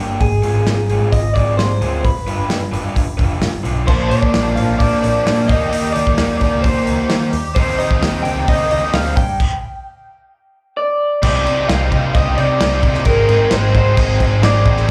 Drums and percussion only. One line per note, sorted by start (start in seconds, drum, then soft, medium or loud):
0.21 kick loud
0.21 open hi-hat medium
0.43 open hi-hat soft
0.67 snare loud
0.67 open hi-hat medium
0.90 open hi-hat soft
1.13 kick medium
1.13 open hi-hat medium
1.36 kick medium
1.36 open hi-hat soft
1.59 snare loud
1.59 open hi-hat medium
1.82 open hi-hat soft
2.05 kick loud
2.05 open hi-hat medium
2.28 open hi-hat medium
2.50 snare loud
2.50 open hi-hat medium
2.73 open hi-hat medium
2.96 kick medium
2.96 open hi-hat medium
3.19 kick medium
3.19 open hi-hat soft
3.42 snare loud
3.42 open hi-hat medium
3.65 open hi-hat soft
3.88 kick loud
3.88 crash loud
4.11 open hi-hat medium
4.23 kick medium
4.34 snare loud
4.34 open hi-hat medium
4.57 open hi-hat medium
4.80 kick loud
4.80 open hi-hat medium
5.04 open hi-hat medium
5.27 snare loud
5.27 open hi-hat medium
5.49 kick loud
5.49 open hi-hat medium
5.73 open hi-hat medium
5.96 open hi-hat medium
6.07 kick medium
6.18 snare loud
6.18 open hi-hat medium
6.41 kick medium
6.41 open hi-hat medium
6.64 kick loud
6.64 open hi-hat medium
6.87 open hi-hat medium
7.10 snare loud
7.10 open hi-hat medium
7.33 open hi-hat medium
7.56 kick loud
7.56 open hi-hat medium
7.80 open hi-hat medium
7.91 kick medium
8.03 snare loud
8.03 open hi-hat medium
8.25 open hi-hat soft
8.48 kick loud
8.48 open hi-hat medium
8.71 open hi-hat medium
8.94 snare loud
8.94 open hi-hat medium
9.17 kick loud
9.17 open hi-hat medium
9.40 kick loud
9.40 crash medium
11.23 kick loud
11.23 crash loud
11.23 crash medium
11.47 crash medium
11.69 snare loud
11.69 crash medium
11.92 kick medium
11.92 crash medium
12.15 kick loud
12.15 crash medium
12.38 crash medium
12.61 snare loud
12.61 crash medium
12.83 kick medium
12.83 crash medium
12.94 snare soft
13.05 kick loud
13.05 crash medium
13.28 crash medium
13.51 snare loud
13.51 crash medium
13.75 kick medium
13.75 crash medium
13.97 kick loud
13.97 crash medium
14.20 kick medium
14.20 crash medium
14.43 snare loud
14.43 crash medium
14.65 kick medium
14.65 crash medium
14.77 snare soft